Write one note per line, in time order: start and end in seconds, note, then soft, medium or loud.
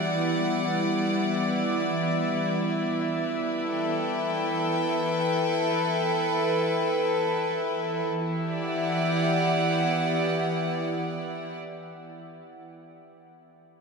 0.00 8.07 E3 medium
0.00 8.08 E3 medium
0.00 3.59 G3 medium
0.00 8.08 B3 medium
0.00 1.69 E4 medium
0.00 8.09 E4 medium
0.00 4.51 D5 medium
0.00 2.64 F#5 medium
3.35 8.10 B4 medium
3.63 8.11 A4 medium
3.72 8.09 G5 medium
8.08 11.58 E3 medium
8.08 11.68 E3 medium
8.08 11.68 B3 medium
8.21 11.57 E4 medium
8.34 11.57 G4 medium
8.47 11.57 D5 medium
8.63 11.58 F#5 medium